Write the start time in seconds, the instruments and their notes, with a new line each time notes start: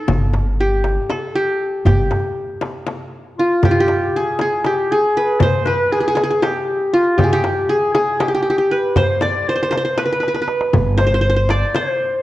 Already playing: qanun D#4 A4
0.08 upright bass G1, frame drum, darbuka dum
0.34 darbuka tek, frame drum
0.59 qanun G4, darbuka ka
0.84 darbuka tek, frame drum
1.10 qanun A4, darbuka tek, frame drum
1.35 qanun G4
1.61 darbuka ka
1.85 upright bass G1, qanun G4, frame drum, darbuka dum
2.11 darbuka tek, frame drum
2.61 darbuka tek, frame drum
2.87 darbuka tek, frame drum
3.38 clarinet F4, qanun F4, darbuka ka
3.63 clarinet G4, qanun G4, frame drum, darbuka dum
3.71 qanun F4
3.78 clarinet G4, qanun G4
3.88 darbuka tek, frame drum
4.16 clarinet G#4, qanun G#4
4.39 qanun G#4, darbuka tek, frame drum
4.64 qanun G4, clarinet G4, darbuka tek, frame drum
4.91 clarinet G#4, qanun G#4
5.15 qanun B4, darbuka ka
5.40 clarinet C5, qanun C5, frame drum, darbuka dum
5.65 clarinet B4, qanun B4, frame drum
5.92 clarinet G#4, qanun G#4
5.99 clarinet G4, qanun G#4
6.05 clarinet G#4, qanun G#4
6.15 qanun G#4, darbuka tek, frame drum
6.23 qanun G#4
6.30 qanun G#4
6.42 qanun G4, clarinet G4, darbuka tek, frame drum
6.94 qanun F4, clarinet F4, darbuka ka
7.17 clarinet G4, qanun G4, darbuka dum, frame drum
7.24 qanun G#4
7.32 clarinet G4, qanun G4
7.44 darbuka tek, frame drum
7.69 qanun G#4, clarinet G#4
7.94 clarinet G#4, qanun G#4, darbuka tek, frame drum
8.20 qanun G4, clarinet G#4, darbuka tek, frame drum
8.28 qanun G4, clarinet G4
8.34 qanun G4
8.42 qanun G4
8.50 qanun G4
8.58 qanun G4
8.71 qanun B4, darbuka ka
8.96 clarinet C5, qanun C5, darbuka dum, frame drum
9.21 clarinet D5, qanun D5, darbuka tek, frame drum
9.47 clarinet C5, qanun C5, darbuka ka
9.55 qanun C5
9.63 qanun C5
9.71 qanun C5, darbuka tek, frame drum
9.77 qanun C5
9.85 qanun C5
9.97 qanun B4, clarinet B4, darbuka tek, frame drum
10.05 qanun B4
10.12 qanun B4
10.20 qanun B4, darbuka tek
10.28 qanun B4
10.34 qanun B4, darbuka ka
10.41 qanun B4
10.48 darbuka tek
10.61 darbuka ka
10.73 upright bass G1, frame drum, darbuka dum
10.98 qanun C5, clarinet C5, darbuka tek, frame drum
11.07 qanun C5
11.14 qanun C5
11.21 qanun C5, clarinet C5
11.30 qanun C5
11.36 qanun C5
11.49 qanun D5, clarinet D5, darbuka tek, frame drum
11.75 qanun C5, clarinet C5, darbuka tek, frame drum